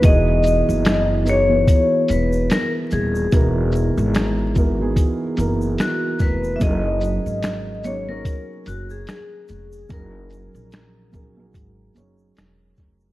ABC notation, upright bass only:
X:1
M:4/4
L:1/16
Q:"Swing 16ths" 1/4=73
K:F#mix
V:1 name="Upright bass" clef=bass
E,,,3 F,,,4- F,,, z2 E,,,2 z2 D,,,2 | E,,,3 G,,,4- G,,, z2 F,,,2 z2 ^E,,,2 | F,,,3 G,,,4- G,,, z2 F,,,2 z2 ^E,,,2 | F,,,3 A,,,4- A,,, G,,,2 F,,,2 E,,,2 ^E,,,2 |]